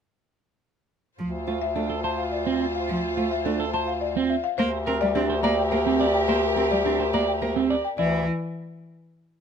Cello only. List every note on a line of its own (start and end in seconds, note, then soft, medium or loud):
1.19 1.30 F3 medium
1.47 1.58 A3 medium
1.76 1.86 A3 medium
2.89 3.00 F3 medium
3.17 3.28 A3 medium
3.46 3.56 A3 medium
4.59 4.69 A#3 medium
4.87 4.98 C4 medium
5.01 5.12 G3 medium
5.15 5.26 C4 medium
5.44 5.54 A#3 medium
5.72 5.82 A#3 medium
6.28 6.39 A#3 medium
6.57 6.67 C4 medium
6.71 6.82 G3 medium
6.85 6.96 C4 medium
7.14 7.24 A#3 medium
7.42 7.52 A#3 medium
7.98 8.25 E3 medium